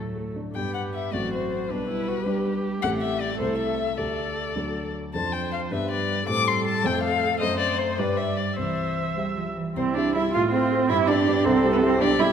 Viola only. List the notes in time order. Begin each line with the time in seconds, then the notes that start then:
Already playing: A3
0.55 G4
1.14 F#4
1.71 D4
1.90 E4
2.08 F#4
2.25 G4
3.38 A4
3.97 A4
5.15 C5
5.72 B4
6.28 A4
7.41 C5
7.99 D5
8.58 E5
9.77 E4
10.34 F4
10.90 G4
11.45 A4
12.00 G4